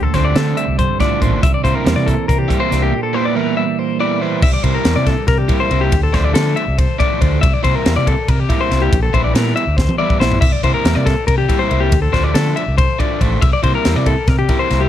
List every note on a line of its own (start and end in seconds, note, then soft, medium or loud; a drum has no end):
0.00 0.78 D2 medium
0.00 0.18 D4 medium
0.00 0.14 A4 medium
0.14 0.31 D2 medium
0.14 0.34 D3 medium
0.14 0.35 F3 medium
0.14 0.35 A3 medium
0.14 1.41 C4 medium
0.14 0.35 D4 medium
0.14 0.25 C5 medium
0.14 kick medium
0.14 snare soft
0.14 closed hi-hat medium
0.25 0.35 D5 medium
0.36 0.63 D3 medium
0.36 0.52 D3 medium
0.36 1.85 D3 medium
0.36 0.64 F3 medium
0.36 0.64 A3 medium
0.36 0.64 D4 medium
0.36 0.57 A4 medium
0.36 snare loud
0.36 closed hi-hat medium
0.57 2.06 G3 medium
0.57 0.78 E5 medium
0.57 closed hi-hat medium
0.68 0.84 C2 medium
0.78 1.00 G2 medium
0.78 1.00 C5 medium
0.78 kick loud
0.78 closed hi-hat medium
1.00 1.21 A2 medium
1.00 1.20 D3 medium
1.00 1.21 F3 loud
1.00 1.20 A3 medium
1.00 1.21 D4 loud
1.00 1.22 D5 medium
1.00 kick medium
1.00 snare soft
1.00 closed hi-hat medium
1.21 1.38 A1 medium
1.21 1.42 A#2 medium
1.21 1.43 D3 medium
1.21 1.43 F3 medium
1.21 1.43 A3 medium
1.21 1.43 D4 medium
1.21 1.43 C5 medium
1.21 kick medium
1.21 closed hi-hat medium
1.42 1.51 C2 loud
1.42 1.85 C3 medium
1.42 1.54 E5 medium
1.42 kick loud
1.42 closed hi-hat loud
1.54 1.64 D5 medium
1.64 1.73 C3 medium
1.64 1.84 C3 medium
1.64 1.84 G3 medium
1.64 1.84 A#3 medium
1.64 2.28 C4 medium
1.64 1.85 E4 medium
1.64 1.75 C5 medium
1.64 kick medium
1.64 closed hi-hat medium
1.75 1.96 A#4 medium
1.85 1.94 E2 medium
1.85 2.13 C3 medium
1.85 2.95 E3 medium
1.85 2.13 G3 medium
1.85 2.14 A#3 medium
1.85 2.14 E4 medium
1.85 snare loud
1.85 closed hi-hat loud
1.96 2.13 C3 medium
1.96 2.07 D5 medium
2.06 2.49 A#3 medium
2.06 2.28 A4 medium
2.06 kick medium
2.06 closed hi-hat medium
2.28 2.46 C3 loud
2.28 2.90 C4 medium
2.28 2.38 A#4 medium
2.28 kick medium
2.28 closed hi-hat medium
2.38 2.60 G4 medium
2.48 2.69 C3 medium
2.48 2.69 G3 medium
2.48 2.60 G3 medium
2.48 2.69 A#3 medium
2.48 2.70 E4 medium
2.48 kick medium
2.48 closed hi-hat medium
2.60 2.92 A#3 medium
2.60 2.82 C5 medium
2.70 2.88 C2 medium
2.70 2.92 C3 medium
2.70 2.92 G3 medium
2.70 2.92 A#3 medium
2.70 4.21 D4 medium
2.70 2.93 E4 medium
2.70 snare soft
2.70 closed hi-hat medium
2.82 3.03 G4 medium
2.92 4.40 A#2 medium
3.03 3.14 A4 medium
3.13 3.34 E3 medium
3.13 3.34 G3 medium
3.13 3.77 A#3 medium
3.13 3.35 B3 loud
3.13 3.35 E4 loud
3.13 3.25 C5 medium
3.25 3.35 D5 medium
3.35 3.63 E3 medium
3.35 4.41 E3 medium
3.35 3.64 G3 medium
3.35 3.64 B3 medium
3.35 3.64 E4 medium
3.35 3.57 A#4 medium
3.57 3.99 G3 medium
3.57 3.79 E5 medium
3.79 4.40 A#3 medium
3.79 4.00 C5 medium
4.00 4.20 E3 medium
4.00 5.93 G3 soft
4.00 4.20 G3 medium
4.00 4.21 B3 medium
4.00 4.21 E4 loud
4.00 4.22 D5 medium
4.21 4.43 E3 medium
4.21 4.43 G3 medium
4.21 4.43 B3 medium
4.21 5.93 D4 medium
4.21 4.43 E4 medium
4.21 4.43 C5 medium
4.42 4.51 C2 medium
4.42 4.53 E5 loud
4.42 kick loud
4.42 crash loud
4.54 4.63 D5 medium
4.63 4.72 C3 medium
4.63 4.83 C3 medium
4.63 4.84 G3 loud
4.63 4.84 A#3 medium
4.63 4.84 E4 loud
4.63 4.74 C5 medium
4.63 kick medium
4.63 ride medium
4.74 4.96 A#4 medium
4.84 4.94 E2 medium
4.84 5.13 C3 medium
4.84 5.13 G3 medium
4.84 5.13 A#3 medium
4.84 5.13 E4 medium
4.84 snare loud
4.84 ride loud
4.96 5.13 C3 medium
4.96 5.07 D5 medium
5.07 5.28 A4 medium
5.07 kick medium
5.07 snare soft
5.07 ride medium
5.28 5.45 C3 medium
5.28 5.38 A#4 medium
5.28 kick loud
5.28 snare soft
5.28 ride medium
5.38 5.60 G4 medium
5.49 5.69 C3 medium
5.49 5.70 G3 medium
5.49 5.70 A#3 medium
5.49 5.70 E4 loud
5.49 kick medium
5.49 ride medium
5.60 5.82 C5 medium
5.70 5.88 C2 medium
5.70 5.92 C3 medium
5.70 5.93 G3 medium
5.70 5.92 A#3 medium
5.70 5.93 E4 medium
5.70 ride medium
5.81 6.03 G4 medium
5.92 6.09 D2 loud
5.92 kick loud
5.92 ride loud
6.03 6.14 A4 medium
6.13 6.31 D2 medium
6.13 6.33 D3 medium
6.13 6.33 F3 medium
6.13 6.34 A3 loud
6.13 6.34 D4 loud
6.13 6.24 C5 medium
6.13 kick medium
6.13 snare soft
6.13 ride medium
6.24 6.34 D5 medium
6.34 6.63 D3 medium
6.34 6.52 D3 loud
6.34 6.63 F3 medium
6.34 6.63 A3 medium
6.34 6.63 D4 medium
6.34 6.56 A4 loud
6.34 snare loud
6.34 ride loud
6.56 6.78 E5 medium
6.56 ride medium
6.68 6.84 C2 loud
6.78 6.99 C5 medium
6.78 kick loud
6.78 ride medium
6.99 7.19 D3 medium
6.99 7.20 F3 medium
6.99 7.20 A3 loud
6.99 7.20 D4 loud
6.99 7.21 D5 medium
6.99 kick medium
6.99 ride medium
7.21 7.38 D2 medium
7.21 7.42 D3 medium
7.21 7.42 F3 medium
7.21 7.42 A3 medium
7.21 7.43 D4 medium
7.21 7.41 C5 medium
7.21 kick medium
7.21 ride medium
7.41 7.51 C2 loud
7.41 7.54 E5 medium
7.41 kick loud
7.41 ride loud
7.54 7.63 D5 medium
7.63 7.83 C3 medium
7.63 7.72 C3 medium
7.63 7.84 G3 loud
7.63 7.84 A#3 loud
7.63 7.85 E4 loud
7.63 7.75 C5 medium
7.63 kick medium
7.63 ride medium
7.75 7.96 A#4 medium
7.85 7.94 E2 loud
7.85 8.13 C3 medium
7.85 8.13 G3 medium
7.85 8.13 A#3 medium
7.85 8.13 E4 medium
7.85 snare loud
7.85 ride loud
7.96 8.13 C3 medium
7.96 8.07 D5 medium
8.07 8.28 A4 medium
8.07 kick medium
8.07 ride medium
8.28 8.45 C3 loud
8.28 8.40 A#4 medium
8.28 kick loud
8.28 ride loud
8.40 8.61 G4 medium
8.49 8.69 C3 medium
8.49 8.70 G3 medium
8.49 8.70 A#3 medium
8.49 8.70 E4 loud
8.49 kick medium
8.49 ride medium
8.61 8.82 C5 medium
8.71 8.88 C2 medium
8.71 8.92 C3 medium
8.71 8.92 G3 medium
8.71 8.92 A#3 medium
8.71 8.93 E4 medium
8.71 snare soft
8.71 ride medium
8.82 9.02 G4 medium
8.93 9.09 A#1 loud
8.93 kick loud
8.93 ride loud
9.03 9.14 A4 medium
9.13 9.31 A#1 medium
9.13 9.34 E3 medium
9.13 9.34 G3 medium
9.13 9.34 B3 medium
9.13 9.35 E4 loud
9.13 9.24 C5 medium
9.13 kick medium
9.13 ride medium
9.24 9.34 D5 medium
9.34 9.51 A#2 loud
9.34 9.63 E3 medium
9.34 9.63 G3 medium
9.34 9.63 B3 medium
9.34 9.63 E4 medium
9.34 9.55 A#4 loud
9.34 snare loud
9.34 ride loud
9.56 9.77 E5 medium
9.56 ride medium
9.67 9.84 D2 medium
9.77 9.98 C5 medium
9.77 kick medium
9.77 snare medium
9.89 high tom medium
9.98 10.19 E3 medium
9.98 10.19 G3 medium
9.98 10.20 B3 medium
9.98 10.20 E4 loud
9.98 10.20 D5 medium
10.10 kick medium
10.20 10.37 A#1 medium
10.20 10.42 E3 medium
10.20 10.42 G3 medium
10.20 10.42 B3 medium
10.20 10.42 E4 medium
10.20 10.41 C5 medium
10.20 snare loud
10.32 floor tom medium
10.41 10.50 C2 medium
10.41 10.52 E5 medium
10.41 kick loud
10.41 crash loud
10.52 10.63 D5 medium
10.63 10.72 C3 medium
10.63 10.83 C3 medium
10.63 10.84 G3 medium
10.63 10.84 A#3 medium
10.63 10.84 E4 loud
10.63 10.74 C5 medium
10.63 kick medium
10.63 ride medium
10.74 10.95 A#4 medium
10.84 10.93 E2 medium
10.84 11.12 C3 medium
10.84 11.13 G3 medium
10.84 11.13 A#3 medium
10.84 11.13 E4 medium
10.84 snare loud
10.84 ride loud
10.95 11.12 C3 medium
10.95 11.06 D5 medium
11.06 11.27 A4 medium
11.06 kick medium
11.06 snare soft
11.06 ride medium
11.27 11.44 C3 loud
11.27 11.37 A#4 medium
11.27 kick loud
11.27 ride loud
11.38 11.59 G4 medium
11.49 11.69 C3 medium
11.49 11.69 G3 medium
11.49 11.70 A#3 medium
11.49 11.70 E4 loud
11.49 kick medium
11.49 ride medium
11.59 11.81 C5 medium
11.70 11.88 C2 medium
11.70 11.92 C3 medium
11.70 11.92 G3 medium
11.70 11.92 A#3 medium
11.70 11.92 E4 medium
11.70 ride medium
11.80 12.02 G4 medium
11.92 12.09 D2 loud
11.92 kick loud
11.92 ride loud
12.02 12.13 A4 medium
12.13 12.30 D2 medium
12.13 12.34 D3 medium
12.13 12.34 F3 loud
12.13 12.34 A3 loud
12.13 12.34 D4 medium
12.13 12.24 C5 medium
12.13 kick medium
12.13 snare soft
12.13 ride medium
12.24 12.35 D5 medium
12.34 12.63 D3 medium
12.34 12.52 D3 loud
12.34 12.63 F3 medium
12.34 12.63 A3 medium
12.34 12.63 D4 medium
12.34 12.56 A4 loud
12.34 snare loud
12.34 ride loud
12.56 12.77 E5 medium
12.56 ride medium
12.68 12.84 C2 loud
12.78 12.99 C5 medium
12.78 kick loud
12.78 ride medium
12.99 13.20 D3 medium
12.99 13.20 F3 medium
12.99 13.20 A3 medium
12.99 13.20 D4 loud
12.99 13.21 D5 medium
12.99 kick medium
12.99 ride medium
13.21 13.37 A1 medium
13.21 13.42 D3 medium
13.21 13.42 F3 medium
13.21 13.42 A3 medium
13.21 13.42 D4 medium
13.21 13.41 C5 medium
13.21 kick medium
13.21 ride medium
13.41 13.51 C2 loud
13.41 13.52 E5 medium
13.41 kick loud
13.41 ride loud
13.53 13.63 D5 medium
13.63 13.84 C3 medium
13.63 13.72 C3 medium
13.63 13.84 G3 medium
13.63 13.85 A#3 medium
13.63 13.84 E4 loud
13.63 13.74 C5 medium
13.63 kick medium
13.63 ride medium
13.75 13.96 A#4 medium
13.85 13.94 E2 medium
13.85 14.13 C3 medium
13.85 14.13 G3 medium
13.85 14.13 A#3 medium
13.85 14.13 E4 medium
13.85 snare loud
13.85 ride loud
13.96 14.13 C3 medium
13.96 14.06 D5 medium
14.06 14.28 A4 medium
14.06 kick medium
14.06 ride medium
14.27 14.44 C3 loud
14.27 14.38 A#4 medium
14.27 kick loud
14.27 snare soft
14.27 ride medium
14.39 14.60 G4 medium
14.49 14.68 C3 loud
14.49 14.69 G3 medium
14.49 14.69 A#3 medium
14.49 14.69 E4 loud
14.49 kick medium
14.49 ride medium
14.59 14.81 C5 medium
14.69 14.87 C2 medium
14.69 14.89 C3 medium
14.69 14.89 G3 medium
14.69 14.89 A#3 medium
14.69 14.89 E4 medium
14.69 snare soft
14.69 ride medium
14.80 14.89 G4 medium